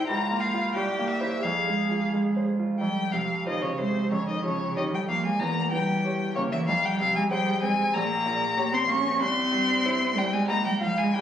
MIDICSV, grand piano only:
0, 0, Header, 1, 2, 480
1, 0, Start_track
1, 0, Key_signature, -4, "minor"
1, 0, Tempo, 678733
1, 57, Time_signature, 2, 2, 24, 8
1, 1979, Tempo, 656455
1, 2939, Tempo, 636943
1, 7259, Tempo, 655022
1, 8262, End_track
2, 0, Start_track
2, 0, Title_t, "Grand piano"
2, 0, Program_c, 0, 0
2, 0, Control_c, 0, 64, 127
2, 0, Note_on_c, 0, 36, 52
2, 0, Note_on_c, 0, 55, 45
2, 0, Note_on_c, 0, 64, 40
2, 0, Note_on_c, 0, 72, 41
2, 62, Note_on_c, 0, 37, 54
2, 71, Control_c, 0, 64, 0
2, 74, Note_off_c, 0, 64, 0
2, 76, Note_off_c, 0, 36, 0
2, 76, Note_off_c, 0, 72, 0
2, 78, Note_off_c, 0, 55, 0
2, 180, Control_c, 0, 64, 127
2, 217, Note_on_c, 0, 58, 36
2, 379, Note_on_c, 0, 65, 35
2, 384, Note_on_c, 0, 77, 39
2, 465, Note_off_c, 0, 58, 0
2, 514, Note_off_c, 0, 37, 0
2, 516, Note_off_c, 0, 65, 0
2, 518, Note_off_c, 0, 77, 0
2, 538, Control_c, 0, 64, 0
2, 538, Note_on_c, 0, 36, 54
2, 666, Control_c, 0, 64, 127
2, 700, Note_on_c, 0, 58, 36
2, 854, Note_on_c, 0, 64, 32
2, 855, Note_on_c, 0, 72, 35
2, 950, Note_off_c, 0, 58, 0
2, 997, Note_off_c, 0, 64, 0
2, 997, Note_off_c, 0, 72, 0
2, 1000, Note_off_c, 0, 36, 0
2, 1020, Note_on_c, 0, 41, 47
2, 1023, Control_c, 0, 64, 0
2, 1131, Control_c, 0, 64, 127
2, 1185, Note_on_c, 0, 56, 34
2, 1350, Note_on_c, 0, 65, 36
2, 1439, Note_off_c, 0, 56, 0
2, 1509, Note_on_c, 0, 56, 34
2, 1602, Note_off_c, 0, 65, 0
2, 1672, Note_on_c, 0, 72, 36
2, 1763, Note_off_c, 0, 56, 0
2, 1835, Note_on_c, 0, 65, 33
2, 1923, Note_off_c, 0, 72, 0
2, 1957, Note_off_c, 0, 41, 0
2, 1986, Note_off_c, 0, 65, 0
2, 1986, Note_on_c, 0, 41, 44
2, 1993, Control_c, 0, 64, 0
2, 2102, Control_c, 0, 64, 127
2, 2221, Note_on_c, 0, 48, 32
2, 2467, Note_on_c, 0, 72, 36
2, 2468, Note_on_c, 0, 65, 34
2, 2605, Note_off_c, 0, 48, 0
2, 2680, Note_off_c, 0, 72, 0
2, 2681, Note_off_c, 0, 65, 0
2, 2708, Note_on_c, 0, 56, 33
2, 2914, Note_off_c, 0, 41, 0
2, 2941, Note_on_c, 0, 41, 47
2, 2943, Note_off_c, 0, 56, 0
2, 2953, Control_c, 0, 64, 0
2, 3082, Control_c, 0, 64, 127
2, 3182, Note_on_c, 0, 53, 38
2, 3430, Note_on_c, 0, 67, 38
2, 3434, Note_on_c, 0, 73, 41
2, 3573, Note_off_c, 0, 53, 0
2, 3648, Note_off_c, 0, 67, 0
2, 3650, Note_off_c, 0, 73, 0
2, 3671, Note_on_c, 0, 58, 34
2, 3883, Note_off_c, 0, 41, 0
2, 3912, Note_off_c, 0, 58, 0
2, 3913, Note_on_c, 0, 40, 54
2, 3924, Control_c, 0, 64, 0
2, 4043, Control_c, 0, 64, 127
2, 4155, Note_on_c, 0, 52, 41
2, 4394, Note_on_c, 0, 67, 41
2, 4396, Note_on_c, 0, 73, 47
2, 4539, Note_off_c, 0, 52, 0
2, 4611, Note_off_c, 0, 67, 0
2, 4612, Note_off_c, 0, 73, 0
2, 4633, Note_on_c, 0, 58, 43
2, 4846, Note_off_c, 0, 40, 0
2, 4874, Note_off_c, 0, 58, 0
2, 4877, Note_on_c, 0, 41, 55
2, 4889, Control_c, 0, 64, 0
2, 4993, Control_c, 0, 64, 127
2, 5115, Note_on_c, 0, 48, 45
2, 5345, Note_on_c, 0, 68, 50
2, 5350, Note_on_c, 0, 72, 56
2, 5496, Note_off_c, 0, 48, 0
2, 5562, Note_off_c, 0, 68, 0
2, 5565, Note_off_c, 0, 72, 0
2, 5587, Note_on_c, 0, 60, 45
2, 5800, Note_off_c, 0, 41, 0
2, 5826, Note_off_c, 0, 60, 0
2, 5833, Note_on_c, 0, 34, 65
2, 5843, Control_c, 0, 64, 0
2, 5966, Control_c, 0, 64, 127
2, 6063, Note_on_c, 0, 46, 52
2, 6301, Note_on_c, 0, 67, 54
2, 6304, Note_on_c, 0, 73, 60
2, 6444, Note_off_c, 0, 46, 0
2, 6516, Note_off_c, 0, 67, 0
2, 6517, Note_off_c, 0, 73, 0
2, 6529, Note_on_c, 0, 58, 50
2, 6754, Note_off_c, 0, 34, 0
2, 6774, Note_off_c, 0, 58, 0
2, 6777, Note_on_c, 0, 36, 67
2, 6793, Control_c, 0, 64, 0
2, 6894, Control_c, 0, 64, 127
2, 7016, Note_on_c, 0, 43, 50
2, 7263, Note_on_c, 0, 64, 54
2, 7266, Note_on_c, 0, 72, 53
2, 7400, Note_off_c, 0, 43, 0
2, 7474, Note_off_c, 0, 64, 0
2, 7475, Note_off_c, 0, 72, 0
2, 7494, Note_on_c, 0, 55, 48
2, 7703, Note_off_c, 0, 36, 0
2, 7724, Note_on_c, 0, 37, 65
2, 7733, Note_off_c, 0, 55, 0
2, 7748, Control_c, 0, 64, 0
2, 7860, Control_c, 0, 64, 127
2, 7967, Note_on_c, 0, 65, 45
2, 7970, Note_on_c, 0, 77, 49
2, 8190, Note_off_c, 0, 65, 0
2, 8192, Note_off_c, 0, 77, 0
2, 8199, Note_off_c, 0, 37, 0
2, 8220, Note_on_c, 0, 36, 59
2, 8232, Control_c, 0, 64, 0
2, 8262, Note_off_c, 0, 36, 0
2, 8262, End_track
0, 0, End_of_file